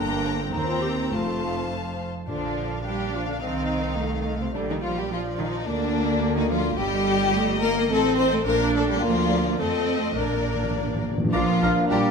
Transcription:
0.00 0.49 G1 medium
0.00 0.49 G2 medium
0.00 0.52 A#3 medium
0.00 0.33 D4 medium
0.00 0.50 G5 medium
0.00 0.23 A#5 medium
0.00 0.50 A#5 medium
0.26 0.34 A5 soft
0.52 1.12 D#2 medium
0.52 1.10 C4 medium
0.52 0.66 D#4 medium
0.52 1.12 A#5 medium
0.56 1.12 C5 soft
0.56 1.12 G5 medium
0.67 0.81 F4 medium
0.82 0.88 G4 medium
0.98 1.14 D#4 medium
1.12 2.08 F1 soft
1.12 2.08 F2 medium
1.12 1.99 A3 soft
1.12 1.71 F4 medium
1.12 2.07 C5 soft
1.12 2.09 F5 soft
1.12 2.08 A5 soft
2.27 3.38 A#1 soft
2.27 3.09 A#2 medium
2.27 2.81 D3 soft
2.27 2.81 F3 soft
2.27 2.81 D4 medium
2.27 4.51 F5 soft
2.85 3.14 G3 soft
2.85 3.42 D4 medium
2.85 3.14 G4 medium
3.14 3.28 F3 soft
3.14 3.29 F4 medium
3.28 3.34 D3 soft
3.28 3.42 D4 medium
3.42 4.55 C2 soft
3.42 4.39 D#3 medium
3.42 3.97 C4 medium
3.42 4.41 D#4 medium
3.98 4.54 A3 medium
4.41 4.46 C3 soft
4.41 4.47 C4 soft
4.54 5.65 A#1 medium
4.54 4.69 D3 medium
4.54 5.10 G3 soft
4.54 4.60 D4 medium
4.54 6.74 D5 medium
4.69 4.83 D#3 medium
4.69 4.75 D#4 medium
4.82 4.96 F3 medium
4.82 4.96 F4 medium
4.97 5.11 G3 medium
4.97 5.11 G4 medium
5.11 5.19 F3 medium
5.11 5.67 F3 medium
5.11 5.21 F4 medium
5.39 5.47 D#3 medium
5.39 5.67 D#4 medium
5.67 6.76 D2 medium
5.67 6.35 D3 medium
5.67 6.76 A#3 medium
5.67 6.36 D4 medium
6.36 6.51 D#3 medium
6.36 6.50 D#4 medium
6.49 6.59 F3 medium
6.49 6.77 F4 medium
6.76 7.90 G1 medium
6.76 7.60 G3 medium
6.76 7.33 G3 medium
6.76 7.59 G4 loud
6.76 8.41 D#5 medium
7.34 7.62 A3 medium
7.60 7.89 A#3 medium
7.60 7.88 A#4 medium
7.90 8.46 A1 medium
7.90 7.99 A3 medium
7.90 8.45 C4 medium
7.90 8.18 A4 loud
8.17 8.24 C4 medium
8.17 8.31 C5 medium
8.31 8.38 A3 medium
8.31 8.46 A4 medium
8.44 9.01 A#1 medium
8.44 8.74 A#3 medium
8.44 9.01 D4 medium
8.44 8.72 A#4 medium
8.44 8.98 D5 medium
8.74 8.89 A3 medium
8.74 8.88 A4 medium
8.88 8.94 G3 medium
8.88 9.02 G4 medium
9.01 9.56 D2 medium
9.01 9.58 F3 medium
9.01 9.59 A#3 medium
9.01 9.59 F4 medium
9.01 9.55 D5 medium
9.59 10.17 F2 medium
9.59 10.16 A3 medium
9.59 10.16 C4 medium
9.59 10.15 A4 medium
9.59 10.17 D#5 medium
10.14 11.12 A#1 medium
10.14 10.22 A#2 soft
10.14 11.04 A#3 soft
10.14 11.02 D4 medium
10.14 11.01 A#4 medium
10.14 11.13 D5 soft
10.24 10.30 A#2 soft
10.32 10.38 A#2 soft
10.39 10.46 A#2 soft
10.47 10.53 A#2 soft
10.54 10.62 A#2 soft
10.63 10.69 A#2 soft
10.70 10.77 A#2 soft
10.79 10.85 A#2 medium
10.87 10.93 A#2 medium
10.94 11.00 A#2 medium
11.02 11.08 A#2 medium
11.09 11.16 A#2 medium
11.18 11.23 A#2 medium
11.24 11.32 A#2 medium
11.32 11.42 A#1 medium
11.32 11.86 F3 medium
11.32 12.11 A#3 medium
11.32 12.11 D4 medium
11.32 11.42 D4 medium
11.32 12.11 D4 medium
11.32 11.85 F4 medium
11.32 11.42 F4 medium
11.32 11.45 D5 medium
11.32 11.86 F5 medium
11.32 11.40 A#5 medium
11.61 11.70 A#1 medium
11.61 11.70 D4 soft
11.61 11.71 F4 soft
11.61 11.76 F5 medium
11.61 11.69 A#5 soft
11.89 11.99 A#1 medium
11.89 12.11 G3 medium
11.89 11.99 D4 medium
11.89 11.99 F4 medium
11.89 12.11 G4 medium
11.89 12.11 D5 medium
11.89 12.11 G5 medium
11.89 11.99 A#5 medium

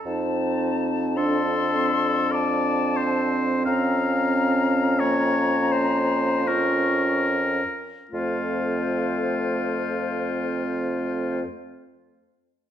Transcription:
0.05 3.62 F2 soft
0.05 1.19 C4 soft
0.05 1.14 D#4 soft
0.05 1.18 A5 soft
1.16 3.65 D4 soft
1.16 1.76 D4 soft
1.16 2.33 A4 medium
1.16 2.36 C6 medium
1.75 4.99 C4 soft
2.32 2.98 D5 medium
2.32 3.33 A5 soft
2.96 3.65 C5 soft
3.65 7.62 F2 soft
3.65 6.44 C#4 soft
3.65 5.01 F5 medium
3.65 6.48 A#5 soft
5.00 6.50 A#3 soft
5.00 5.73 C#5 medium
5.72 6.49 C5 soft
6.46 7.64 C#4 soft
6.46 7.66 F4 soft
6.46 7.94 A#4 soft
6.46 7.30 C#6 soft
8.11 11.44 F2 soft
8.11 11.43 A3 soft
8.11 11.44 C4 soft
8.11 11.41 F4 soft
8.11 11.42 C5 soft

